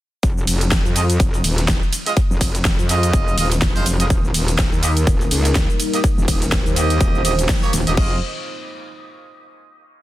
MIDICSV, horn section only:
0, 0, Header, 1, 2, 480
1, 0, Start_track
1, 0, Key_signature, -4, "minor"
1, 0, Tempo, 483871
1, 230, Time_signature, 4, 2, 24, 8
1, 9941, End_track
2, 0, Start_track
2, 0, Title_t, "Horn section"
2, 0, Program_c, 0, 61
2, 950, Note_on_c, 0, 56, 73
2, 950, Note_on_c, 0, 65, 67
2, 950, Note_on_c, 0, 75, 85
2, 1031, Note_off_c, 0, 56, 0
2, 1031, Note_off_c, 0, 75, 0
2, 1032, Note_off_c, 0, 65, 0
2, 2047, Note_on_c, 0, 56, 85
2, 2047, Note_on_c, 0, 65, 76
2, 2047, Note_on_c, 0, 75, 92
2, 2108, Note_off_c, 0, 56, 0
2, 2108, Note_off_c, 0, 65, 0
2, 2108, Note_off_c, 0, 75, 0
2, 2869, Note_on_c, 0, 56, 92
2, 2869, Note_on_c, 0, 65, 82
2, 2869, Note_on_c, 0, 75, 98
2, 3325, Note_off_c, 0, 56, 0
2, 3325, Note_off_c, 0, 65, 0
2, 3325, Note_off_c, 0, 75, 0
2, 3350, Note_on_c, 0, 56, 84
2, 3350, Note_on_c, 0, 65, 75
2, 3350, Note_on_c, 0, 75, 93
2, 3432, Note_off_c, 0, 56, 0
2, 3432, Note_off_c, 0, 65, 0
2, 3432, Note_off_c, 0, 75, 0
2, 3728, Note_on_c, 0, 56, 96
2, 3728, Note_on_c, 0, 65, 86
2, 3728, Note_on_c, 0, 72, 102
2, 3825, Note_off_c, 0, 56, 0
2, 3825, Note_off_c, 0, 65, 0
2, 3825, Note_off_c, 0, 72, 0
2, 3967, Note_on_c, 0, 56, 92
2, 3967, Note_on_c, 0, 65, 80
2, 3967, Note_on_c, 0, 75, 100
2, 4028, Note_off_c, 0, 56, 0
2, 4028, Note_off_c, 0, 65, 0
2, 4028, Note_off_c, 0, 75, 0
2, 4789, Note_on_c, 0, 58, 81
2, 4789, Note_on_c, 0, 67, 74
2, 4789, Note_on_c, 0, 75, 82
2, 4871, Note_off_c, 0, 58, 0
2, 4871, Note_off_c, 0, 67, 0
2, 4871, Note_off_c, 0, 75, 0
2, 5887, Note_on_c, 0, 58, 85
2, 5887, Note_on_c, 0, 67, 77
2, 5887, Note_on_c, 0, 75, 92
2, 5948, Note_off_c, 0, 58, 0
2, 5948, Note_off_c, 0, 67, 0
2, 5948, Note_off_c, 0, 75, 0
2, 6709, Note_on_c, 0, 58, 86
2, 6709, Note_on_c, 0, 75, 99
2, 6710, Note_on_c, 0, 67, 81
2, 7165, Note_off_c, 0, 58, 0
2, 7165, Note_off_c, 0, 67, 0
2, 7165, Note_off_c, 0, 75, 0
2, 7189, Note_on_c, 0, 58, 84
2, 7189, Note_on_c, 0, 67, 72
2, 7189, Note_on_c, 0, 75, 95
2, 7271, Note_off_c, 0, 58, 0
2, 7271, Note_off_c, 0, 67, 0
2, 7271, Note_off_c, 0, 75, 0
2, 7567, Note_on_c, 0, 73, 107
2, 7568, Note_on_c, 0, 58, 95
2, 7568, Note_on_c, 0, 67, 84
2, 7664, Note_off_c, 0, 58, 0
2, 7664, Note_off_c, 0, 73, 0
2, 7665, Note_off_c, 0, 67, 0
2, 7807, Note_on_c, 0, 58, 89
2, 7807, Note_on_c, 0, 67, 80
2, 7807, Note_on_c, 0, 75, 99
2, 7868, Note_off_c, 0, 58, 0
2, 7868, Note_off_c, 0, 67, 0
2, 7868, Note_off_c, 0, 75, 0
2, 7909, Note_on_c, 0, 75, 99
2, 7910, Note_on_c, 0, 56, 93
2, 7910, Note_on_c, 0, 65, 80
2, 8095, Note_off_c, 0, 56, 0
2, 8095, Note_off_c, 0, 65, 0
2, 8095, Note_off_c, 0, 75, 0
2, 9941, End_track
0, 0, End_of_file